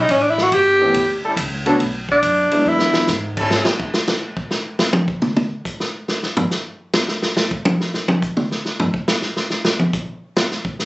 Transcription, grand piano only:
0.81 E3 A3 B3 C#4 G4
1.66 D3 A3 B3 C#4 F#4
2.52 F#3 G#3 B3 D4 E4

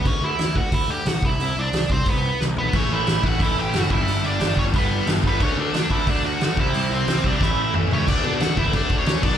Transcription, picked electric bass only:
0.06 D2
0.22 D2
0.40 D2
0.56 D2
0.72 D2
0.89 D2
1.06 B1
1.22 C2
1.40 C2
1.57 C2
1.73 C2
1.89 C2
2.07 C2
2.41 C2
2.58 B1
2.73 A1
2.91 A1
3.08 A1
3.23 A1
3.40 A1
3.58 A1
3.75 F#1
3.90 G1
4.08 G1
4.25 G1
4.40 G1
4.57 G1
4.74 G1
5.07 G1
5.24 G1
5.41 D2
5.58 D2
5.74 D2
5.90 D2
6.07 D2
6.24 D2
6.42 D2
6.57 C2
6.75 C2
6.91 C2
7.08 C2
7.24 C2
7.41 A1
7.75 A1
7.91 C#2
8.08 D2
8.24 B2
8.40 D2
8.58 A1
8.73 D2
9.07 D2
9.23 B1

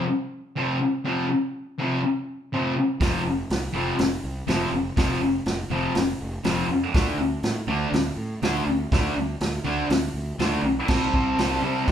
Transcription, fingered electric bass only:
3.00 F1
3.25 F1
3.50 C2
3.75 F1
4.00 F1
4.24 C2
4.47 F1
4.72 F1
4.97 F1
5.22 F1
5.46 F1
5.70 F1
5.96 F1
6.21 F1
6.45 F1
6.69 F2
6.94 D2
7.18 D2
7.43 A2
7.67 D2
7.92 D2
8.17 A2
8.42 D2
8.67 D2
8.92 D2
9.17 D2
9.41 D2
9.65 D2
9.89 D2
10.14 D2
10.38 D2
10.63 B1
10.88 C2
11.13 C2
11.37 C2
11.62 C3
11.88 C2

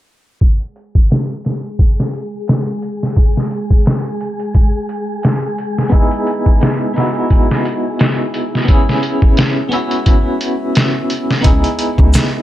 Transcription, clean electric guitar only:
5.90 B3 D#4
5.94 E4 G#4
6.94 B3 D#4 E4
7.00 F#4
8.65 B3 C#4 E4
8.71 G#4
9.69 B3 C#4
9.73 E4 F#4
11.41 B3 D#4 E4
11.47 G#4

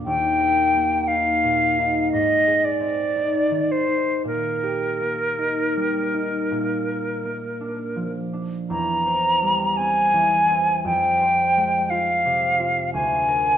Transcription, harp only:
Already playing: A#3 D4 A#4
0.06 D#2
0.40 A#4
0.74 A#3
1.08 D#4
1.44 A#2
1.79 D#4
2.13 G#2
2.47 G#4
2.81 C4
3.16 D#4
3.51 D#3
3.88 D#4
4.24 A#2
4.63 G4
5.00 A#3
5.38 D#4
5.76 G3
6.14 D#4
6.51 A#2
6.88 A#4
7.24 A#3
7.61 D4
7.96 F3
8.33 D4
8.70 E2
9.06 C5
9.43 G3
9.78 C4
10.13 E3
10.50 C4
10.85 F2
11.21 C5
11.57 G#3
11.91 F4
12.25 C3
12.59 F4
12.94 D2
13.28 A#4

